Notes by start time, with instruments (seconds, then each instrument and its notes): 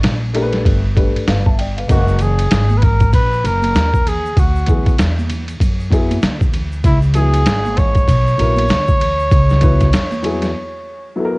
0.03 upright bass A#1, snare, hi-hat pedal, ride
0.33 upright piano A3 D4 G4 A#4, ride
0.42 upright piano B4
0.53 snare, ride
0.65 upright bass G1, kick, ride
0.95 upright piano A3 D4 G4 B4, kick, ride
1.15 muted upright bass stroke, ride
1.28 upright bass G1, upright piano B4 F5, snare, hi-hat pedal, ride
1.46 upright piano E5 A5, kick
1.58 upright piano D5 G5, ride
1.77 upright piano B4 F5, ride
1.88 upright bass F#1, upright piano G#3 C#4 F#4 A#4, muted trumpet F#4, kick, ride, shaker
2.08 shaker
2.19 muted trumpet G#4, ride, low conga, shaker
2.38 ride, shaker
2.51 upright bass G#1, snare, hi-hat pedal, ride, shaker
2.70 high conga, shaker
2.78 muted trumpet B4, low conga, shaker
2.82 muted trumpet A#4, kick, ride
3.00 kick, ride, shaker
3.13 upright bass A#1, muted trumpet B4, kick, ride, shaker
3.33 shaker
3.44 upright bass F#1, muted trumpet A#4, ride, shaker
3.62 ride, high conga, shaker
3.75 upright bass D#2, snare, hi-hat pedal, ride, shaker
3.94 kick, shaker
4.07 muted trumpet G#4, ride, low conga, shaker
4.26 shaker
4.37 upright bass D2, muted trumpet F#4, kick, ride, shaker
4.56 shaker
4.67 upright piano F#3 B3 E4 G#4, kick, ride, low conga, shaker
4.86 kick, ride, shaker
4.99 upright bass E2, snare, hi-hat pedal, ride, shaker
5.19 high conga, shaker
5.30 ride, low conga, shaker
5.48 ride, shaker
5.60 upright bass F#2, kick, ride, shaker
5.80 shaker
5.90 upright piano F#3 B3 E4 G#4, kick, ride, shaker
6.11 ride, high conga, shaker
6.22 upright bass D2, snare, hi-hat pedal, ride, shaker
6.41 kick, shaker
6.53 ride, low conga, shaker
6.72 shaker
6.84 upright bass C#2, muted trumpet E4, kick, ride, shaker
7.02 shaker
7.14 upright piano F#3 B3 E4 G#4, muted trumpet G#4, ride, low conga, shaker
7.33 ride, shaker
7.46 upright bass G#1, snare, hi-hat pedal, ride, shaker
7.65 high conga, shaker
7.77 muted trumpet C#5, kick, ride, low conga, shaker
7.95 kick, ride, shaker
8.08 upright bass B1, kick, ride, shaker
8.27 shaker
8.38 upright bass A#1, upright piano F#3 B3 E4 A#4, ride, shaker
8.56 ride, high conga, shaker
8.68 upright bass D2, snare, hi-hat pedal, ride, shaker
8.87 kick, shaker
9.00 ride, low conga, shaker
9.19 shaker
9.31 upright bass C#2, kick, ride, shaker
9.49 snare, shaker
9.61 upright piano F#3 B3 E4 B4, kick, ride, low conga, shaker
9.80 kick, snare, ride, shaker
9.93 upright bass E2, snare, hi-hat pedal, ride, shaker
10.11 high conga, shaker
10.23 upright piano F#3 B3 E4 G#4, ride, low conga, shaker
10.42 snare, ride, shaker
11.16 upright piano F#3 B3 E4 A4
11.25 upright piano A#4